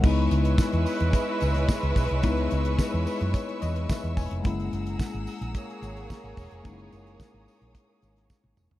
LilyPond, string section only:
\new Staff \with { instrumentName = "String section" } { \time 4/4 \key cis \dorian \tempo 4 = 109 << { e'''1~ | e'''1 | e'''1 | dis'''1 | } \\ { <b' cis'' cis'''>1~ | <b' cis'' cis'''>1 | <gis' fis'' ais''>1~ | <gis' fis'' ais''>1 | } >> }